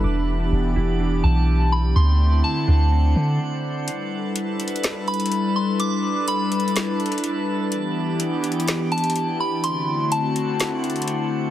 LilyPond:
<<
  \new Staff \with { instrumentName = "Synth bell" } { \time 4/4 \key g \major \tempo 4 = 125 r2 r8 a''4 b''8 | c'''4 a''2 r4 | r2 r8 b''4 c'''8 | d'''4 b''2. |
r2 r8 a''4 b''8 | c'''4 a''2 r4 | }
  \new Staff \with { instrumentName = "Synth texture" } { \time 4/4 \key g \major << { <d'' g''>1 | <c'' fis''>1 | <b' a''>1~ | <b' a''>1 |
<d'' g''>1 | <c'' fis''>1 | } \\ { e'1 | d'1 | e'1~ | e'1~ |
e'1 | d'1 | } >> }
  \new Staff \with { instrumentName = "Clean electric guitar" } { \time 4/4 \key g \major d'''4. e'8 d'8 e4. | c'''4. d'8 c'8 d4. | r1 | r1 |
r1 | r1 | }
  \new Staff \with { instrumentName = "Analog synth pad" } { \time 4/4 \key g \major <e b d' g'>1 | <d a c' e'>2. r4 | <g d' e' a' b'>1~ | <g d' e' a' b'>1 |
<e b e' g'>1 | <d a c' e' fis'>1 | }
  \new Staff \with { instrumentName = "808-style bass" } { \clef bass \time 4/4 \key g \major e,,4 e,,8 e,,4 b,,4. | d,4 r8 d,4 d8 r4 | r1 | r1 |
r1 | r1 | }
  \new DrumStaff \with { instrumentName = "Drums" } \drummode { \time 4/4 r4 r4 r4 r4 | r4 r4 r4 r4 | hh4 \tuplet 3/2 { hh16 r16 r16 hh16 hh16 hh16 } <hh sn>8 hh32 hh32 hh32 hh32 hh4 | hh4 \tuplet 3/2 { hh16 r16 r16 hh16 hh16 hh16 } <hh sn>8 hh32 hh32 hh32 hh32 hh4 |
hh4 \tuplet 3/2 { hh16 r16 r16 hh16 hh16 hh16 } <hh sn>8 hh32 hh32 hh32 hh32 hh4 | hh4 hh8 hh8 <hh sn>8 hh32 hh32 hh32 hh32 hh4 | }
>>